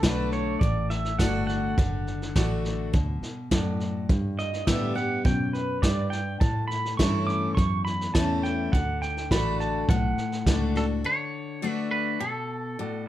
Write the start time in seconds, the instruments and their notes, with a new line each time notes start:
0.03 fingered electric bass B1, steel-string acoustic guitar D3 A3 D4 F#4, upright piano F#4 A4 D5, pedal steel guitar B4, kick, snare, hi-hat pedal
0.32 pedal steel guitar C#5, snare
0.59 fingered electric bass A1, steel-string acoustic guitar A2, pedal steel guitar D5, kick, snare
0.90 pedal steel guitar E5, snare
1.05 snare
1.19 fingered electric bass G1, steel-string acoustic guitar D3 A3 D4 F#4, upright piano F#4 A4 D5, pedal steel guitar F#5, kick, snare, hi-hat pedal
1.47 pedal steel guitar F#5, snare
1.78 fingered electric bass F#1, steel-string acoustic guitar D3, kick, snare
2.07 snare
2.22 snare
2.36 fingered electric bass A1, steel-string acoustic guitar D3 A3 D4 F#4, upright piano F#4 A4 D5, kick, snare, hi-hat pedal
2.65 snare
2.93 fingered electric bass D2, steel-string acoustic guitar B2, kick, snare
3.22 muted fingered electric bass stroke, snare
3.51 fingered electric bass F#2, steel-string acoustic guitar A2, upright piano F#4 A4 D5, kick, snare, hi-hat pedal
3.80 snare
4.09 fingered electric bass G2, steel-string acoustic guitar G2, kick, snare
4.39 pedal steel guitar D#5, snare
4.53 snare
4.66 fingered electric bass A2, steel-string acoustic guitar D3 G3 B3 G4, upright piano G4 B4 D5, pedal steel guitar E5, kick, snare, hi-hat pedal
4.95 steel-string acoustic guitar B3 G4, pedal steel guitar F#5, snare
5.25 steel-string acoustic guitar F#2, fingered electric bass B2, pedal steel guitar G5, kick, snare
5.53 pedal steel guitar B4, snare
5.82 fingered electric bass G2, steel-string acoustic guitar G2, upright piano G4 B4 D5, pedal steel guitar D5, kick, snare, hi-hat pedal
6.10 pedal steel guitar G5, snare
6.40 fingered electric bass A2, steel-string acoustic guitar A2, pedal steel guitar A5, kick, snare
6.68 pedal steel guitar B5, snare
6.85 snare
6.97 fingered electric bass G2, steel-string acoustic guitar E3 A3 C#4 E4, upright piano E4 A4 C#5, pedal steel guitar C#6, kick, snare, hi-hat pedal
7.27 pedal steel guitar D6, snare
7.55 steel-string acoustic guitar E2, fingered electric bass F#2, pedal steel guitar C#6, kick, snare
7.85 pedal steel guitar B5, snare
8.01 snare
8.14 fingered electric bass E2, steel-string acoustic guitar E3 A3 C#4 E4, upright piano E4 A4 C#5, pedal steel guitar A5, kick, snare, hi-hat pedal
8.43 pedal steel guitar G5, snare
8.72 fingered electric bass D2, steel-string acoustic guitar D3, pedal steel guitar F#5, kick, snare
9.02 pedal steel guitar G5, snare
9.17 snare
9.30 fingered electric bass A1, steel-string acoustic guitar D3 A3 D4 F#4, upright piano F#4 A4 D5, pedal steel guitar B5, kick, snare, hi-hat pedal
9.60 pedal steel guitar A5, snare
9.89 fingered electric bass B1, steel-string acoustic guitar A2, pedal steel guitar F#5, kick, snare
10.18 muted fingered electric bass stroke, snare
10.32 snare
10.46 fingered electric bass C#2, steel-string acoustic guitar D3 A3 D4 F#4, upright piano F#4 A4 D5, kick, snare, hi-hat pedal
10.76 steel-string acoustic guitar D4 F#4, clean electric guitar A4, snare
11.04 steel-string acoustic guitar D3, clean electric guitar C#5
11.61 steel-string acoustic guitar D3 A3 D4 F#4, upright piano F#4 A4 D5
11.70 clean electric guitar B4
11.91 clean electric guitar B4
12.20 steel-string acoustic guitar B2, clean electric guitar A4
12.79 steel-string acoustic guitar A2, upright piano F#4 A4 D5